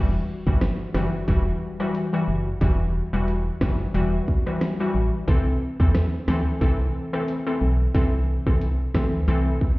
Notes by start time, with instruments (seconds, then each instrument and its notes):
Already playing: fm bass E1, synth pluck E3 G3 F#4
0.47 fm bass G1, synth pluck E3 G3 F#4, kick
0.61 cross-stick, snare, closed hi-hat
0.94 fm bass F#1, synth pluck E3 G3 F#4, cross-stick, snare
1.28 fm bass E1, synth pluck E3 G3 F#4, kick, closed hi-hat
1.80 synth pluck E3 G3 F#4, cross-stick
1.95 closed hi-hat
2.13 synth pluck E3 G3 F#4
2.28 fm bass F#1
2.61 fm bass E1, synth pluck E3 G3 F#4, kick, closed hi-hat
3.13 fm bass E1, synth pluck E3 G3 F#4
3.28 closed hi-hat
3.61 fm bass F#1, synth pluck E3 G3 F#4, kick, cross-stick, snare
3.94 fm bass E1, synth pluck E3 G3 F#4, closed hi-hat
4.28 kick
4.46 synth pluck E3 G3 F#4, cross-stick
4.61 cross-stick, snare, closed hi-hat
4.80 synth pluck E3 G3 F#4
4.95 fm bass A1
5.28 fm bass C2, synth pluck E3 C4 A4, kick, closed hi-hat
5.80 fm bass E2, synth pluck E3 C4 A4, kick
5.95 cross-stick, snare, closed hi-hat
6.28 fm bass D2, synth pluck E3 C4 A4, cross-stick, snare
6.61 fm bass C2, synth pluck E3 C4 A4, kick, closed hi-hat
7.13 synth pluck E3 C4 A4, cross-stick
7.28 closed hi-hat
7.46 synth pluck E3 C4 A4
7.61 fm bass B1
7.94 fm bass C2, synth pluck E3 C4 A4, kick, closed hi-hat
8.46 fm bass C2, synth pluck E3 C4 A4, kick
8.61 closed hi-hat
8.95 fm bass D2, synth pluck E3 C4 A4, kick, cross-stick, snare
9.28 fm bass C2, synth pluck E3 C4 A4, closed hi-hat
9.61 kick